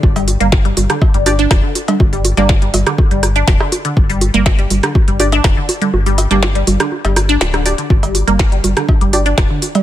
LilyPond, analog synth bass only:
\new Staff \with { instrumentName = "Analog synth bass" } { \clef bass \time 4/4 \key g \minor \tempo 4 = 122 g,,8. g,,8. g,,16 r8 g,,8. f,,16 r8. | g,,8. g,,8. g,,16 r8 g,,8. f,,16 r8. | g,,8. g,,8. g,,16 r8 g,,8. f,,16 r8. | g,,8. g,,8. g,,16 r8 g,,8. d,,8. r16 |
g,,8. g,,8. g,,16 r8 g,,8. f,,16 r8. | }